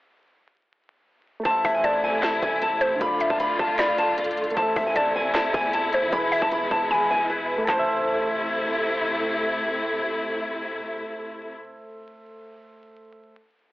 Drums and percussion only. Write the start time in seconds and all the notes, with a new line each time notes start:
1.45 kick, closed hi-hat
1.65 kick, open hi-hat
1.84 closed hi-hat
2.23 snare, clap, closed hi-hat
2.42 kick, closed hi-hat
2.62 closed hi-hat
2.81 closed hi-hat
3.01 kick, closed hi-hat
3.20 closed hi-hat
3.30 kick
3.40 closed hi-hat
3.59 kick
3.79 snare, clap, closed hi-hat
3.98 closed hi-hat
4.18 closed hi-hat
4.24 closed hi-hat
4.31 closed hi-hat
4.37 closed hi-hat
4.44 closed hi-hat
4.50 closed hi-hat
4.57 kick, closed hi-hat
4.76 kick, open hi-hat
4.96 closed hi-hat
5.35 snare, clap, closed hi-hat
5.54 kick, closed hi-hat
5.73 closed hi-hat
5.93 closed hi-hat
6.13 kick, closed hi-hat
6.32 open hi-hat
6.42 kick
6.52 closed hi-hat
6.71 kick
7.68 kick, clap